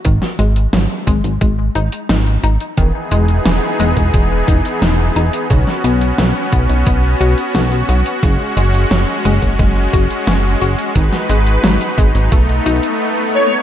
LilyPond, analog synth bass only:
\new Staff \with { instrumentName = "Analog synth bass" } { \clef bass \time 4/4 \key e \major \tempo 4 = 88 gis,,16 r16 gis,,8 gis,,16 r16 gis,,16 gis,,16 gis,,8 gis,,16 r16 gis,,8 gis,,16 r16 | e,,16 r16 e,,8 e,,16 r16 e,,16 e,,16 e,,8 e,,16 r16 e,,8 e,,16 r16 | b,,16 r16 b,,8 b,,16 r16 b,,16 b,,16 b,,8 b,,16 r16 b,,8 b,,16 r16 | fis,,16 r16 fis,,8 fis,,16 r16 fis,,16 fis,,16 fis,,8 fis,,16 r16 fis,,8 fis,,16 r16 |
gis,,16 r16 gis,,8 gis,,16 r16 gis,,16 gis,,16 b,,8 b,,16 r4 r16 | }